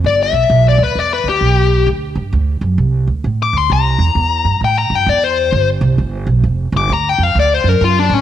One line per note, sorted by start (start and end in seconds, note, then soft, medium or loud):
0.04 0.32 G1 loud
0.04 0.20 D5 loud
0.23 0.65 E5 loud
0.33 0.49 B1 medium
0.50 0.78 B1 loud
0.69 0.82 D5 medium
0.78 0.95 D2 loud
0.84 0.99 B4 medium
0.95 1.23 E2 medium
0.95 1.12 D5 medium
1.14 1.27 B4 loud
1.24 1.40 D2 medium
1.29 1.87 G4 loud
1.41 1.85 B1 medium
1.86 2.15 D2 loud
2.15 2.32 G2 medium
2.33 2.61 D2 medium
2.61 2.77 F#2 medium
2.78 3.06 C2 medium
3.07 3.23 D2 medium
3.24 3.52 A2 medium
3.43 3.56 D6 loud
3.53 3.69 D2 medium
3.58 3.71 C6 loud
3.70 3.98 C2 medium
3.70 4.60 A#5 loud
3.98 4.14 E2 medium
4.15 4.43 E2 medium
4.45 4.60 G2 medium
4.61 4.89 A2 medium
4.61 4.78 G5 medium
4.79 4.95 A#5 medium
4.90 5.06 G2 medium
4.95 5.08 G5 medium
5.06 5.51 E2 loud
5.06 5.23 D5 loud
5.24 5.68 C5 loud
5.52 5.80 G1 loud
5.81 5.98 C2 loud
5.98 6.26 G1 medium
6.27 6.43 B1 medium
6.43 6.72 F1 medium
6.72 6.89 G1 loud
6.77 6.91 D6 loud
6.89 7.17 D2 loud
6.94 7.09 A#5 medium
7.09 7.23 G5 medium
7.18 7.35 F2 medium
7.23 7.37 F5 loud
7.35 7.63 D2 loud
7.40 7.53 D5 medium
7.54 7.69 C5 loud
7.64 7.80 F#2 medium
7.69 7.82 A#4 loud
7.81 8.09 F#2 loud
7.81 7.98 F4 medium
8.00 8.14 D4 medium
8.10 8.21 A2 loud
8.14 8.21 C#4 medium